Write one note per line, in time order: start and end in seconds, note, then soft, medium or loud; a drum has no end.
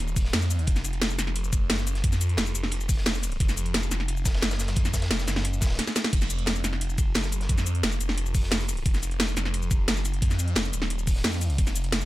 0.00 0.32 D#1 loud
0.07 ride soft
0.07 shaker soft
0.16 kick loud
0.16 closed hi-hat medium
0.16 open hi-hat medium
0.16 shaker medium
0.25 snare soft
0.33 0.66 F2 loud
0.33 snare loud
0.33 closed hi-hat medium
0.33 ride loud
0.42 snare soft
0.42 shaker soft
0.50 closed hi-hat medium
0.50 ride medium
0.50 shaker medium
0.59 closed hi-hat soft
0.67 1.17 F1 loud
0.67 kick loud
0.67 closed hi-hat medium
0.67 ride medium
0.76 snare soft
0.76 closed hi-hat soft
0.76 shaker soft
0.84 closed hi-hat medium
0.84 ride medium
0.84 shaker medium
0.93 closed hi-hat soft
0.93 ride soft
1.01 snare loud
1.01 closed hi-hat medium
1.01 ride medium
1.09 ride soft
1.09 shaker soft
1.18 1.68 F1 loud
1.18 snare medium
1.18 closed hi-hat medium
1.18 ride medium
1.18 shaker medium
1.27 snare soft
1.36 closed hi-hat medium
1.36 ride medium
1.44 shaker soft
1.53 kick loud
1.53 closed hi-hat medium
1.53 ride medium
1.53 shaker medium
1.70 2.02 F#1 loud
1.70 snare loud
1.70 closed hi-hat medium
1.70 ride loud
1.78 snare medium
1.78 shaker soft
1.87 closed hi-hat medium
1.87 ride medium
1.87 shaker medium
1.95 snare medium
1.95 closed hi-hat soft
2.04 2.37 F2 loud
2.04 kick loud
2.04 closed hi-hat loud
2.04 ride medium
2.12 snare soft
2.12 closed hi-hat soft
2.12 shaker soft
2.21 closed hi-hat medium
2.21 ride medium
2.21 shaker medium
2.29 closed hi-hat soft
2.37 2.54 F1 loud
2.37 snare loud
2.37 closed hi-hat medium
2.37 ride medium
2.46 shaker soft
2.55 3.05 F1 medium
2.55 closed hi-hat medium
2.55 ride medium
2.55 shaker medium
2.63 snare soft
2.71 closed hi-hat medium
2.71 ride loud
2.81 ride soft
2.81 shaker soft
2.89 kick loud
2.89 closed hi-hat medium
2.89 open hi-hat medium
2.89 shaker medium
2.97 snare soft
3.05 3.39 F1 loud
3.05 snare loud
3.05 closed hi-hat medium
3.05 ride medium
3.15 snare soft
3.15 shaker soft
3.23 closed hi-hat medium
3.23 ride medium
3.23 shaker medium
3.32 closed hi-hat soft
3.40 3.90 F1 loud
3.40 kick loud
3.40 closed hi-hat loud
3.40 ride medium
3.48 snare soft
3.48 closed hi-hat soft
3.48 shaker soft
3.57 closed hi-hat medium
3.57 ride medium
3.57 shaker medium
3.65 closed hi-hat soft
3.65 ride soft
3.74 snare loud
3.74 closed hi-hat loud
3.74 ride medium
3.83 ride soft
3.83 shaker soft
3.91 4.41 F1 medium
3.91 snare medium
3.91 closed hi-hat medium
3.91 ride medium
3.91 shaker medium
4.00 snare soft
4.08 closed hi-hat medium
4.08 ride medium
4.17 shaker soft
4.25 kick loud
4.25 snare loud
4.25 closed hi-hat medium
4.25 ride medium
4.25 shaker medium
4.34 snare loud
4.34 ride medium
4.41 4.75 F#1 loud
4.41 snare loud
4.41 closed hi-hat loud
4.41 ride medium
4.51 snare loud
4.51 ride medium
4.51 shaker soft
4.59 snare medium
4.59 closed hi-hat medium
4.59 ride medium
4.59 shaker medium
4.68 snare loud
4.68 closed hi-hat soft
4.68 ride medium
4.76 5.09 F2 loud
4.76 kick loud
4.76 closed hi-hat loud
4.76 ride medium
4.85 snare soft
4.85 closed hi-hat soft
4.85 shaker soft
4.94 kick medium
4.94 snare loud
4.94 closed hi-hat medium
4.94 ride medium
4.94 shaker medium
5.02 snare loud
5.02 closed hi-hat soft
5.02 ride medium
5.11 5.26 F1 loud
5.11 snare loud
5.11 closed hi-hat loud
5.11 ride medium
5.19 snare loud
5.19 ride medium
5.19 shaker soft
5.27 5.79 F#1 loud
5.27 snare loud
5.27 snare medium
5.27 closed hi-hat medium
5.27 ride medium
5.27 shaker medium
5.36 snare loud
5.36 snare soft
5.36 ride medium
5.45 closed hi-hat loud
5.45 ride loud
5.53 ride soft
5.53 shaker soft
5.61 kick loud
5.61 snare medium
5.61 closed hi-hat medium
5.61 ride medium
5.61 shaker medium
5.65 snare medium
5.65 ride medium
5.70 snare medium
5.70 ride medium
5.75 snare medium
5.75 ride medium
5.78 snare medium
5.78 closed hi-hat loud
5.78 ride medium
5.87 snare medium
5.87 ride soft
5.87 shaker soft
5.95 snare medium
5.95 snare loud
5.95 closed hi-hat medium
5.95 ride medium
5.95 shaker medium
6.04 snare medium
6.04 closed hi-hat soft
6.04 ride soft
6.13 6.63 F1 loud
6.13 kick loud
6.13 closed hi-hat loud
6.13 ride medium
6.13 crash medium
6.21 snare soft
6.21 closed hi-hat soft
6.21 shaker soft
6.30 closed hi-hat medium
6.30 ride medium
6.30 shaker medium
6.38 closed hi-hat soft
6.38 ride soft
6.46 snare loud
6.46 closed hi-hat loud
6.46 ride medium
6.56 ride soft
6.56 shaker soft
6.64 7.14 F1 loud
6.64 snare medium
6.64 closed hi-hat medium
6.64 ride medium
6.64 shaker medium
6.73 snare soft
6.81 closed hi-hat loud
6.81 ride medium
6.90 shaker soft
6.98 kick loud
6.98 closed hi-hat medium
6.98 ride medium
6.98 shaker medium
7.14 7.48 F#1 loud
7.14 snare loud
7.14 closed hi-hat loud
7.14 ride medium
7.23 snare medium
7.23 shaker soft
7.32 closed hi-hat medium
7.32 ride medium
7.32 shaker medium
7.41 snare medium
7.41 closed hi-hat soft
7.49 7.82 F2 loud
7.49 kick loud
7.49 closed hi-hat medium
7.49 ride medium
7.58 snare soft
7.58 closed hi-hat soft
7.58 shaker soft
7.66 closed hi-hat medium
7.66 ride medium
7.66 shaker medium
7.75 closed hi-hat soft
7.83 7.99 F1 loud
7.83 snare loud
7.83 closed hi-hat medium
7.83 ride medium
7.92 shaker soft
8.00 8.50 F1 loud
8.00 closed hi-hat medium
8.00 ride medium
8.00 shaker medium
8.09 snare soft
8.18 closed hi-hat medium
8.18 ride medium
8.26 ride soft
8.26 shaker soft
8.35 kick loud
8.35 closed hi-hat medium
8.35 open hi-hat medium
8.35 shaker medium
8.43 snare soft
8.51 8.84 F1 loud
8.51 snare loud
8.51 closed hi-hat loud
8.51 ride medium
8.60 snare soft
8.60 shaker soft
8.69 closed hi-hat medium
8.69 ride medium
8.69 shaker medium
8.77 closed hi-hat soft
8.85 9.35 F1 loud
8.85 kick loud
8.85 closed hi-hat medium
8.85 ride medium
8.94 snare soft
8.94 closed hi-hat soft
8.94 shaker soft
9.03 closed hi-hat medium
9.03 ride medium
9.03 shaker medium
9.11 closed hi-hat soft
9.11 ride soft
9.20 snare loud
9.20 closed hi-hat medium
9.20 ride medium
9.28 ride soft
9.28 shaker soft
9.36 9.87 F1 loud
9.36 snare medium
9.36 closed hi-hat medium
9.36 ride medium
9.36 shaker medium
9.45 snare soft
9.54 closed hi-hat medium
9.54 ride medium
9.62 shaker soft
9.71 kick loud
9.71 closed hi-hat medium
9.71 ride medium
9.71 shaker medium
9.88 10.21 F#1 loud
9.88 snare loud
9.88 closed hi-hat medium
9.88 ride medium
9.96 snare medium
9.96 shaker soft
10.05 closed hi-hat medium
10.05 ride medium
10.05 shaker medium
10.14 closed hi-hat soft
10.22 10.55 F2 loud
10.22 kick loud
10.22 closed hi-hat medium
10.22 ride medium
10.30 snare soft
10.30 closed hi-hat soft
10.30 shaker soft
10.39 closed hi-hat medium
10.39 ride medium
10.39 shaker medium
10.48 closed hi-hat soft
10.55 10.72 F1 loud
10.55 snare loud
10.55 closed hi-hat medium
10.55 ride medium
10.65 shaker soft
10.73 11.23 D#1 loud
10.73 closed hi-hat medium
10.73 ride medium
10.73 shaker medium
10.82 snare soft
10.90 closed hi-hat medium
10.90 ride medium
10.99 ride soft
10.99 shaker soft
11.07 kick loud
11.07 closed hi-hat medium
11.07 open hi-hat medium
11.07 shaker medium
11.16 snare soft
11.24 11.57 F2 loud
11.24 snare loud
11.24 closed hi-hat medium
11.24 ride loud
11.33 snare soft
11.33 shaker soft
11.41 closed hi-hat medium
11.41 ride medium
11.41 shaker medium
11.50 closed hi-hat soft
11.58 12.05 F1 loud
11.58 kick loud
11.58 closed hi-hat medium
11.58 ride medium
11.67 snare soft
11.67 closed hi-hat soft
11.67 shaker soft
11.75 closed hi-hat medium
11.75 ride medium
11.75 shaker medium
11.84 closed hi-hat soft
11.84 ride soft
11.92 snare loud
11.92 closed hi-hat medium
11.92 ride medium
12.01 ride soft
12.01 shaker soft